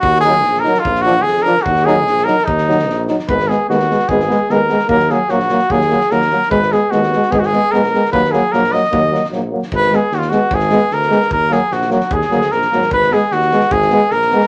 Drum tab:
SD |-oo-oooo|-oo-oooo|-oo-oooo|-oooo-oo|
BD |o-------|o-------|o-------|o-------|

SD |-oo-oooo|-oo-o-oo|-oo-oooo|-ooooooo|
BD |o-------|o-------|o-------|o-------|

SD |-oo-oooo|-oo-oooo|-oo-oooo|--ooo--o|
BD |o-------|o-------|o-------|o-------|

SD |-oo-ooo-|-oo-oooo|--o-oooo|-ooooooo|
BD |o-------|o-------|o-------|o-------|

SD |-oo-oooo|-oo-oooo|
BD |o-------|o-------|